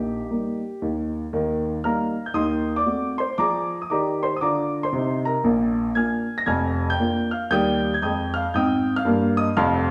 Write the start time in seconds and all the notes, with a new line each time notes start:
Already playing: A#1 A#2 D#4 G4
0.31 G3 A#3 D#4
0.82 D#2 D#3
1.33 D#2 D#3
1.84 G3 A#3 D#4 F5 A#5 F6
2.26 G6
2.34 D#2 D#3 D#5 C6 D#6
2.76 D5 D6
2.86 A3 C4 F#4
3.18 C5 C6
3.38 F3 G#4 D5 A#5 D6
3.82 D#6
3.90 D#3 G4 D5 A#5 D6
4.23 C5 C6
4.36 D#6
4.41 D3 F4 D5 A#5 D6
4.83 C5 C6
4.93 C3 D#4
5.25 A#4 A#5
5.44 A#1 A#2
5.95 A#3 D4 F4 G#5 F6 G#6
6.38 A#6
6.46 F1 F2 G#5 F6 G#6
6.90 G5 G6
6.99 A#3 D4 F4
7.31 F5 F6
7.50 D#2 G3 G5 D#6 G6
7.94 G#6
8.02 F2 G#3 G5 D#6 G6
8.34 F5 F6
8.54 G#2 C4 G5 D#6 G6
8.96 F5 F6
9.05 G2 A#3
9.37 D#5 D#6
9.57 F1 F2 F5 C6 F6